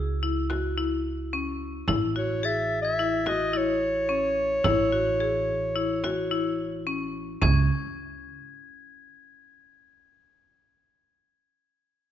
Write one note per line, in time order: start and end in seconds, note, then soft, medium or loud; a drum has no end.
0.00 1.84 C#2 medium
0.00 0.19 G#4 medium
0.23 0.42 E4 medium
0.50 0.69 F#4 medium
0.50 frame drum soft
0.78 1.17 E4 medium
1.33 1.72 C#4 medium
1.88 4.61 A1 medium
1.88 2.08 E4 medium
1.88 frame drum medium
2.16 2.35 F#4 medium
2.16 2.47 C#5 medium
2.16 frame drum soft
2.43 2.82 G#4 medium
2.43 2.81 E5 loud
2.43 3.15 A6 medium
2.82 3.30 E5 loud
2.82 3.54 G#6 medium
2.99 3.19 E4 medium
3.26 3.46 F#4 medium
3.26 3.59 D#5 medium
3.26 frame drum soft
3.54 3.93 E4 medium
3.54 6.88 C#5 loud
4.09 4.48 C#4 medium
4.64 7.38 A1 medium
4.64 4.84 E4 loud
4.64 frame drum medium
4.92 5.12 F#4 medium
5.20 5.59 G#4 medium
5.49 frame drum soft
5.76 5.95 E4 medium
6.04 6.24 F#4 medium
6.04 frame drum soft
6.31 6.70 E4 medium
6.87 7.26 C#4 medium
7.42 7.68 C#2 medium
7.42 7.68 C#4 medium
7.42 10.15 G#6 medium
7.42 frame drum medium